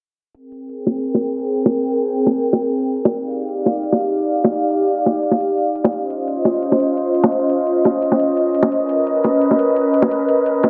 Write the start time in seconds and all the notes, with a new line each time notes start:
0.34 C4 G#4 A#4 G5, closed hi-hat
0.52 closed hi-hat
0.69 closed hi-hat
0.87 closed hi-hat, high bongo
1.04 closed hi-hat
1.14 high bongo
1.22 closed hi-hat
1.39 closed hi-hat
1.57 closed hi-hat
1.66 high bongo
1.74 closed hi-hat
1.92 closed hi-hat
2.09 closed hi-hat
2.26 closed hi-hat, high bongo
2.44 closed hi-hat
2.53 high bongo
2.61 closed hi-hat
2.79 closed hi-hat
2.96 closed hi-hat
3.05 high bongo
3.14 D#4 G4 D5 F5, closed hi-hat
3.31 closed hi-hat
3.49 closed hi-hat
3.66 closed hi-hat, high bongo
3.84 closed hi-hat
3.92 high bongo
4.01 closed hi-hat
4.18 closed hi-hat
4.36 closed hi-hat
4.44 high bongo
4.53 closed hi-hat
4.71 closed hi-hat
4.88 closed hi-hat
5.06 closed hi-hat, high bongo
5.23 closed hi-hat
5.31 high bongo
5.40 closed hi-hat
5.58 closed hi-hat
5.75 closed hi-hat
5.84 high bongo
5.92 C#4 F4 C5 D#5, closed hi-hat
6.10 closed hi-hat
6.28 closed hi-hat
6.45 closed hi-hat, high bongo
6.62 closed hi-hat
6.72 high bongo
6.80 closed hi-hat
6.97 closed hi-hat
7.15 closed hi-hat
7.24 high bongo
7.32 closed hi-hat
7.50 closed hi-hat
7.67 closed hi-hat
7.85 closed hi-hat, high bongo
8.02 closed hi-hat
8.12 high bongo
8.20 closed hi-hat
8.37 closed hi-hat
8.55 closed hi-hat
8.63 high bongo
8.72 A#4 B4, closed hi-hat
8.89 closed hi-hat
9.07 closed hi-hat
9.24 closed hi-hat, high bongo
9.42 closed hi-hat
9.51 high bongo
9.59 closed hi-hat
9.76 closed hi-hat
9.94 closed hi-hat
10.02 high bongo
10.11 closed hi-hat
10.29 closed hi-hat
10.46 closed hi-hat
10.63 closed hi-hat, high bongo